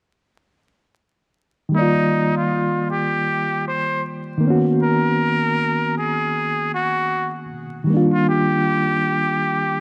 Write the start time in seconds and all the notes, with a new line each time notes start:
1.69 D#3 G3
1.75 A#3 D#4 D5
1.81 F4
2.37 F4
2.91 G4
3.68 C5
4.38 D#3 A#3
4.44 B3 C#4
4.50 F#4
4.83 A#4
5.98 G#4
6.75 F#4
7.84 D#3 G3
7.90 A#3 D4
7.96 F4
8.13 F4
8.29 G4